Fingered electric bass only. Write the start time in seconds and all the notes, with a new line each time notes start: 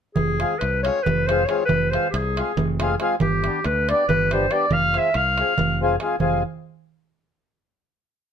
0.17 F1
0.62 C2
1.07 F1
1.69 F1
2.14 C2
2.57 F1
3.21 G1
3.65 D2
4.09 G1
4.70 F1
5.15 C2
5.59 F1
6.20 F1